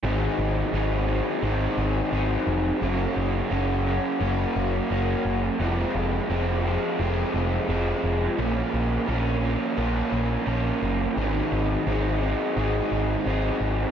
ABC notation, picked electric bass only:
X:1
M:4/4
L:1/8
Q:1/4=86
K:Abmix
V:1 name="Picked electric bass" clef=bass
A,,, A,,, A,,,2 A,,, A,,, A,,, F,,, | G,,, G,,, G,,,2 G,,, G,,, G,,, G,,, | F,,, F,,, F,,,2 F,,, F,,, F,,, F,,, | B,,, B,,, B,,,2 B,,, B,,, B,,, G,,, |
A,,, A,,, A,,,2 A,,, A,,, A,,, A,,, |]